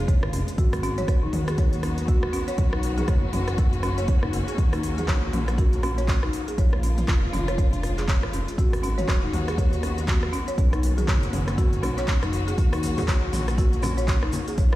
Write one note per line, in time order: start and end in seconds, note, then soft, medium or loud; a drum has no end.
0.00 0.56 D3 medium
0.00 0.56 F3 medium
0.00 2.54 G#3 medium
0.00 0.54 A#3 medium
0.00 0.56 F4 medium
0.08 0.19 F1 medium
0.08 0.21 C#5 medium
0.08 kick loud
0.08 closed hi-hat medium
0.23 0.30 G#1 medium
0.23 cross-stick loud
0.33 0.44 F1 loud
0.33 0.41 C#4 medium
0.33 open hi-hat medium
0.48 closed hi-hat soft
0.58 1.04 G#1 loud
0.58 6.54 D#3 medium
0.58 2.56 F#3 medium
0.58 4.54 B3 medium
0.58 6.54 F#4 medium
0.58 0.71 F#4 medium
0.58 kick loud
0.58 closed hi-hat medium
0.73 cross-stick loud
0.73 open hi-hat medium
0.83 0.97 C#4 loud
0.83 open hi-hat medium
0.98 1.03 C#5 loud
0.98 closed hi-hat soft
0.98 mid tom medium
1.08 1.28 D#1 medium
1.08 kick loud
1.08 cross-stick medium
1.08 closed hi-hat medium
1.23 1.29 D#4 medium
1.33 2.29 D#2 loud
1.33 open hi-hat medium
1.33 mid tom medium
1.48 1.57 G#4 medium
1.48 cross-stick loud
1.48 closed hi-hat soft
1.58 1.72 C#5 medium
1.58 kick loud
1.58 closed hi-hat medium
1.73 closed hi-hat soft
1.83 1.91 C#4 medium
1.83 cross-stick medium
1.83 open hi-hat medium
1.98 closed hi-hat soft
2.08 2.21 F#4 medium
2.08 kick loud
2.08 closed hi-hat medium
2.23 cross-stick loud
2.33 2.47 C#4 loud
2.33 open hi-hat medium
2.48 2.53 C#5 loud
2.48 closed hi-hat soft
2.58 3.04 B1 loud
2.58 8.54 A#3 medium
2.58 6.54 C#4 medium
2.58 kick loud
2.58 closed hi-hat medium
2.73 2.78 D#4 medium
2.73 cross-stick loud
2.83 open hi-hat medium
2.98 3.07 G#4 medium
2.98 closed hi-hat soft
2.98 mid tom medium
3.08 3.28 F#1 medium
3.08 3.21 C#5 medium
3.08 kick loud
3.08 cross-stick medium
3.08 closed hi-hat medium
3.33 4.08 F#1 loud
3.33 3.41 C#4 medium
3.33 open hi-hat medium
3.33 mid tom medium
3.48 cross-stick medium
3.48 closed hi-hat soft
3.58 3.71 F#4 medium
3.58 kick loud
3.58 closed hi-hat medium
3.73 closed hi-hat soft
3.83 3.97 C#4 loud
3.83 cross-stick medium
3.83 open hi-hat medium
3.98 4.03 C#5 loud
3.98 closed hi-hat soft
4.08 4.19 F#1 medium
4.08 kick loud
4.08 closed hi-hat medium
4.22 4.30 F#1 medium
4.22 4.28 D#4 medium
4.22 cross-stick medium
4.33 4.44 F#1 loud
4.33 open hi-hat medium
4.48 4.57 G#4 medium
4.48 closed hi-hat soft
4.58 5.04 D#2 loud
4.58 6.56 F#3 medium
4.58 kick loud
4.58 closed hi-hat medium
4.73 4.78 D#4 medium
4.73 cross-stick medium
4.73 open hi-hat medium
4.83 open hi-hat medium
4.98 5.07 G#4 medium
4.98 closed hi-hat soft
4.98 mid tom medium
5.08 5.28 A#1 medium
5.08 5.21 C#5 medium
5.08 kick loud
5.08 cross-stick medium
5.08 clap loud
5.08 closed hi-hat medium
5.33 6.29 A#1 loud
5.33 5.41 C#4 medium
5.33 open hi-hat medium
5.33 mid tom medium
5.48 cross-stick medium
5.48 closed hi-hat soft
5.58 5.71 F#4 medium
5.58 kick loud
5.58 closed hi-hat medium
5.73 closed hi-hat soft
5.83 5.97 C#4 loud
5.83 cross-stick medium
5.83 open hi-hat medium
5.98 6.03 C#5 loud
5.98 closed hi-hat soft
6.08 kick loud
6.08 clap loud
6.08 closed hi-hat medium
6.23 6.28 D#4 medium
6.23 cross-stick medium
6.33 open hi-hat medium
6.48 6.57 G#4 medium
6.48 closed hi-hat soft
6.58 7.04 A#1 loud
6.58 8.56 D3 medium
6.58 8.56 F3 medium
6.58 10.54 G#3 medium
6.58 8.56 F4 medium
6.58 6.71 C#5 medium
6.58 kick loud
6.58 closed hi-hat medium
6.73 cross-stick medium
6.83 6.91 C#4 medium
6.83 open hi-hat medium
6.98 closed hi-hat soft
6.98 mid tom medium
7.08 7.28 F1 medium
7.08 7.22 F4 medium
7.08 kick loud
7.08 cross-stick medium
7.08 clap loud
7.08 closed hi-hat medium
7.33 8.08 F1 loud
7.33 7.47 C#4 loud
7.33 open hi-hat medium
7.33 mid tom medium
7.48 7.54 C#5 loud
7.48 cross-stick medium
7.48 closed hi-hat soft
7.58 kick loud
7.58 closed hi-hat medium
7.73 7.78 D4 medium
7.73 closed hi-hat soft
7.83 cross-stick medium
7.83 open hi-hat medium
7.98 8.07 G#4 medium
7.98 clap soft
7.98 closed hi-hat soft
8.08 8.19 F1 medium
8.08 8.21 C#5 medium
8.08 kick loud
8.08 clap loud
8.08 closed hi-hat medium
8.23 8.30 G#1 medium
8.23 cross-stick medium
8.33 8.44 F1 loud
8.33 8.41 C#4 medium
8.33 open hi-hat medium
8.48 closed hi-hat soft
8.58 9.04 G#1 loud
8.58 10.56 D#3 medium
8.58 10.56 F#3 medium
8.58 10.56 B3 medium
8.58 10.56 F#4 medium
8.58 8.71 F#4 medium
8.58 kick loud
8.58 closed hi-hat medium
8.73 cross-stick medium
8.73 open hi-hat medium
8.83 8.97 C#4 loud
8.83 open hi-hat medium
8.98 9.03 C#5 loud
8.98 closed hi-hat soft
8.98 mid tom medium
9.08 9.28 D#1 medium
9.08 kick loud
9.08 cross-stick medium
9.08 clap loud
9.08 closed hi-hat medium
9.23 9.28 D#4 medium
9.33 10.29 D#2 loud
9.33 open hi-hat medium
9.33 mid tom medium
9.48 9.57 G#4 medium
9.48 cross-stick medium
9.48 closed hi-hat soft
9.58 9.71 C#5 medium
9.58 kick loud
9.58 closed hi-hat medium
9.73 closed hi-hat soft
9.83 9.91 C#4 medium
9.83 cross-stick medium
9.83 open hi-hat medium
9.98 closed hi-hat soft
10.08 10.21 F#4 medium
10.08 kick loud
10.08 clap loud
10.08 closed hi-hat medium
10.23 cross-stick medium
10.33 10.47 C#4 loud
10.33 open hi-hat medium
10.48 10.53 C#5 loud
10.48 closed hi-hat soft
10.58 11.04 B1 loud
10.58 14.54 D#3 medium
10.58 12.56 A#3 medium
10.58 12.56 B3 medium
10.58 12.56 C#4 medium
10.58 14.54 F#4 medium
10.58 kick loud
10.58 closed hi-hat medium
10.73 10.78 D#4 medium
10.73 cross-stick medium
10.73 closed hi-hat soft
10.83 open hi-hat medium
10.98 11.07 G#4 medium
10.98 closed hi-hat soft
10.98 mid tom medium
11.08 11.28 F#1 medium
11.08 11.21 C#5 medium
11.08 kick loud
11.08 cross-stick medium
11.08 clap loud
11.08 closed hi-hat medium
11.23 closed hi-hat soft
11.33 11.82 F#1 loud
11.33 11.41 C#4 medium
11.33 open hi-hat medium
11.33 mid tom medium
11.48 cross-stick medium
11.48 closed hi-hat soft
11.58 11.71 F#4 medium
11.58 kick loud
11.58 closed hi-hat medium
11.73 closed hi-hat soft
11.83 12.16 B1 loud
11.83 11.97 C#4 loud
11.83 cross-stick medium
11.83 open hi-hat medium
11.98 12.03 C#5 loud
11.98 clap soft
11.98 closed hi-hat soft
12.08 kick loud
12.08 clap loud
12.08 closed hi-hat medium
12.23 12.54 F#1 medium
12.23 12.28 D#4 medium
12.23 cross-stick medium
12.23 closed hi-hat soft
12.33 open hi-hat medium
12.47 12.57 G#4 medium
12.47 closed hi-hat soft
12.58 13.04 D#2 loud
12.58 14.56 F#3 medium
12.58 14.76 A#3 medium
12.58 14.56 C#4 medium
12.58 kick loud
12.58 closed hi-hat medium
12.58 shaker soft
12.72 12.78 D#4 medium
12.72 cross-stick loud
12.72 open hi-hat medium
12.83 open hi-hat loud
12.83 muted conga medium
12.83 shaker loud
12.97 13.07 G#4 medium
12.97 closed hi-hat soft
12.97 mid tom medium
12.97 low conga loud
12.97 shaker soft
13.08 13.28 A#1 medium
13.08 13.21 C#5 medium
13.08 kick loud
13.08 cross-stick medium
13.08 clap loud
13.08 closed hi-hat medium
13.08 muted conga soft
13.08 shaker soft
13.33 14.29 A#1 loud
13.33 13.41 C#4 medium
13.33 open hi-hat medium
13.33 mid tom medium
13.33 muted conga medium
13.33 shaker medium
13.48 cross-stick medium
13.48 closed hi-hat soft
13.48 shaker soft
13.58 13.71 F#4 medium
13.58 kick loud
13.58 closed hi-hat medium
13.58 muted conga soft
13.58 high conga medium
13.58 shaker medium
13.73 closed hi-hat soft
13.83 13.97 C#4 loud
13.83 cross-stick medium
13.83 open hi-hat medium
13.83 high conga loud
13.83 low conga medium
13.83 shaker medium
13.97 14.03 C#5 loud
13.97 closed hi-hat soft
13.97 muted conga medium
13.97 shaker soft
14.08 kick loud
14.08 clap loud
14.08 closed hi-hat medium
14.08 shaker soft
14.22 14.28 D#4 medium
14.22 cross-stick medium
14.22 muted conga soft
14.33 open hi-hat loud
14.33 high conga loud
14.33 shaker medium
14.48 14.57 G#4 medium
14.48 closed hi-hat soft
14.48 muted conga medium
14.48 shaker soft
14.58 14.76 A#1 loud
14.58 14.76 D3 medium
14.58 14.76 F3 medium
14.58 14.76 G#3 medium
14.58 14.76 F4 medium
14.58 14.71 C#5 medium
14.58 kick loud
14.58 closed hi-hat medium
14.58 shaker medium
14.73 cross-stick loud